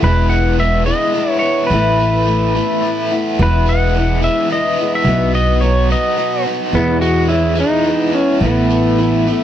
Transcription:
0.00 0.90 E1 medium
0.00 1.42 E2 medium
0.00 0.59 E2 medium
0.00 0.59 E3 medium
0.00 1.42 B3 medium
0.00 1.14 E4 medium
0.00 0.32 B4 medium
0.04 0.59 B2 medium
0.04 0.58 E3 medium
0.04 0.59 G#3 medium
0.04 0.60 B3 medium
0.04 0.60 E4 medium
0.29 0.85 G#3 medium
0.29 0.59 F#5 medium
0.58 0.87 E3 soft
0.58 2.25 E3 medium
0.58 0.88 G#3 soft
0.58 0.87 B3 medium
0.58 0.86 E4 medium
0.58 0.86 E5 loud
0.86 1.13 E3 soft
0.86 1.70 G#3 medium
0.86 1.14 G#3 soft
0.86 1.15 B3 soft
0.86 1.15 E4 soft
0.86 1.32 D#5 medium
1.14 1.71 E3 soft
1.14 1.71 G#3 medium
1.14 1.72 B3 medium
1.14 2.82 E4 medium
1.14 1.73 E4 medium
1.32 1.39 C#5 medium
1.39 1.73 B3 medium
1.39 1.70 C#5 medium
1.67 2.58 A1 medium
1.67 3.10 A2 medium
1.67 3.04 B4 medium
1.71 2.27 A2 medium
1.71 2.25 E3 medium
1.71 2.27 A3 medium
1.71 2.28 B3 medium
1.71 2.29 E4 medium
1.99 2.54 A3 medium
2.26 3.38 E3 medium
2.26 2.54 E3 medium
2.26 2.55 A3 medium
2.26 2.55 B3 medium
2.26 2.54 E4 medium
2.55 3.39 A3 medium
2.55 2.84 B3 soft
2.55 2.83 E4 soft
2.59 2.84 A3 soft
2.82 3.11 E3 medium
2.82 3.12 A3 medium
2.82 3.12 B3 medium
2.82 3.38 E4 medium
2.87 3.10 E4 medium
3.11 3.39 A3 soft
3.11 4.78 B3 medium
3.11 3.39 B3 soft
3.11 3.39 E4 soft
3.39 4.26 E1 medium
3.39 3.95 E2 medium
3.39 4.79 E2 medium
3.39 3.95 B2 medium
3.39 3.95 E3 medium
3.39 3.95 G#3 medium
3.39 3.97 B3 medium
3.39 3.96 E4 medium
3.39 3.69 B4 medium
3.66 4.21 G#3 medium
3.66 4.20 F#5 medium
3.95 5.06 E3 medium
3.95 4.49 E3 medium
3.95 4.50 G#3 medium
3.95 4.52 B3 medium
3.99 4.52 E4 medium
4.22 5.06 G#3 medium
4.22 4.49 E5 medium
4.50 4.78 E3 medium
4.50 4.79 G#3 medium
4.50 4.79 B3 medium
4.50 5.06 E4 medium
4.50 4.79 E4 medium
4.50 4.94 D#5 medium
4.78 5.34 B3 medium
4.78 5.07 B3 soft
4.78 5.07 E4 soft
4.83 5.07 E3 soft
4.83 5.08 G#3 soft
4.95 5.35 E5 medium
5.04 5.92 B1 medium
5.04 6.45 B2 medium
5.04 5.62 B2 medium
5.04 5.61 F#3 medium
5.04 5.62 B3 medium
5.09 5.63 D#4 medium
5.09 5.63 F#4 medium
5.34 5.89 B3 medium
5.34 5.60 D#5 medium
5.61 6.74 F#3 medium
5.61 6.16 F#3 soft
5.61 6.17 B3 medium
5.61 6.18 D#4 medium
5.61 5.90 C#5 medium
5.65 6.19 F#4 medium
5.91 6.74 B3 medium
5.91 6.43 D#5 medium
6.17 6.73 F#3 soft
6.17 6.74 B3 medium
6.17 6.75 D#4 medium
6.17 6.74 F#4 medium
6.17 6.75 F#4 medium
6.46 6.74 D#4 medium
6.73 7.61 E2 medium
6.73 8.13 E2 medium
6.73 7.30 E2 medium
6.73 7.30 B2 medium
6.73 7.30 E3 medium
6.73 7.30 G#3 medium
6.73 7.01 B3 medium
6.73 7.32 B3 medium
6.73 7.21 E4 medium
6.73 7.21 G#4 medium
6.73 7.21 B4 medium
6.77 7.33 E4 medium
7.01 7.54 G#3 medium
7.01 7.27 F#4 medium
7.28 8.97 E3 medium
7.28 7.58 E3 medium
7.28 7.58 G#3 soft
7.28 7.58 B3 medium
7.28 7.58 E4 medium
7.28 7.77 E4 medium
7.28 7.77 G#4 medium
7.28 7.77 C#5 medium
7.33 7.58 E4 medium
7.55 8.40 G#3 medium
7.55 7.86 B3 soft
7.55 7.86 E4 soft
7.60 7.86 E3 soft
7.60 7.87 G#3 soft
7.60 8.16 D#4 medium
7.85 8.14 E3 medium
7.85 8.15 G#3 medium
7.85 9.44 E4 medium
7.85 8.33 E4 medium
7.85 8.34 G#4 medium
7.85 8.34 B4 medium
7.89 8.15 B3 medium
7.89 8.14 E4 medium
8.12 8.44 B3 medium
8.12 8.43 C#4 medium
8.12 8.42 E4 soft
8.17 8.43 E3 soft
8.17 8.44 G#3 soft
8.17 8.43 B3 soft
8.41 9.28 A1 medium
8.41 9.44 A2 medium
8.41 8.98 A2 medium
8.41 8.99 E3 medium
8.41 8.99 A3 medium
8.41 9.44 B3 medium
8.41 8.90 E4 medium
8.41 8.89 A4 medium
8.41 8.90 B4 medium
8.45 9.03 B3 medium
8.45 9.02 E4 medium
8.70 9.25 A3 medium
8.97 9.44 E3 medium
8.97 9.26 E3 medium
8.97 9.44 E4 medium
8.97 9.44 A4 medium
8.97 9.44 B4 medium
9.02 9.28 A3 medium
9.02 9.28 B3 medium
9.02 9.27 E4 medium
9.26 9.44 A3 medium
9.26 9.44 B3 soft
9.26 9.44 E4 soft
9.31 9.44 A3 soft

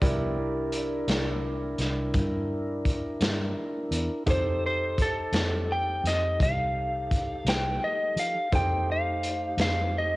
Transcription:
0.01 1.04 C2 medium
0.01 0.38 F3 medium
0.01 0.38 B3 soft
0.01 0.38 D4 soft
0.01 4.23 E4 medium
0.01 4.23 G4 soft
0.01 4.23 A#4 medium
0.01 4.23 D5 medium
0.01 kick medium
0.01 closed hi-hat medium
0.38 4.24 D4 soft
0.38 4.24 E4 medium
0.38 4.24 A#4 medium
0.72 closed hi-hat medium
1.07 1.75 C2 medium
1.07 snare medium
1.07 closed hi-hat medium
1.78 2.11 C2 medium
1.78 snare soft
1.78 closed hi-hat soft
2.14 3.17 G2 medium
2.14 kick medium
2.14 closed hi-hat medium
2.85 kick medium
2.85 closed hi-hat soft
3.21 3.53 G2 medium
3.21 snare loud
3.21 closed hi-hat medium
3.91 4.08 E2 medium
3.91 closed hi-hat medium
4.26 5.29 F2 medium
4.26 8.48 D#4 soft
4.26 8.49 D#4 medium
4.26 8.48 G4 soft
4.26 8.49 G4 medium
4.26 8.48 A4 soft
4.26 8.49 A4 soft
4.26 8.48 C5 soft
4.26 kick loud
4.26 closed hi-hat medium
4.31 4.65 C5 medium
4.66 5.01 C5 medium
4.98 5.73 A4 medium
4.98 kick medium
4.98 closed hi-hat medium
5.32 6.00 F2 medium
5.32 snare medium
5.32 closed hi-hat medium
5.72 6.07 G5 medium
6.04 6.37 F2 medium
6.04 6.42 D#5 medium
6.04 snare soft
6.04 closed hi-hat soft
6.40 7.42 C2 medium
6.40 7.49 F5 medium
6.40 kick medium
6.40 closed hi-hat medium
7.11 kick medium
7.11 closed hi-hat medium
7.45 7.78 C2 medium
7.45 snare loud
7.45 closed hi-hat medium
7.49 7.84 G5 medium
7.84 8.19 D#5 medium
8.16 8.33 F3 medium
8.16 8.55 F5 medium
8.16 closed hi-hat medium
8.52 9.54 F2 medium
8.52 8.88 E3 medium
8.52 8.88 A#3 soft
8.52 10.16 D#4 soft
8.52 10.16 G4 soft
8.52 8.87 G4 medium
8.52 10.16 A4 soft
8.52 10.16 C5 medium
8.52 8.90 G5 medium
8.52 kick medium
8.52 closed hi-hat medium
8.88 10.16 A3 medium
8.88 10.16 D#4 medium
8.88 10.16 G4 medium
8.88 9.60 F5 medium
9.23 closed hi-hat medium
9.57 10.16 F2 medium
9.57 snare medium
9.57 closed hi-hat medium
9.61 9.96 F5 medium
9.98 10.16 D#5 medium

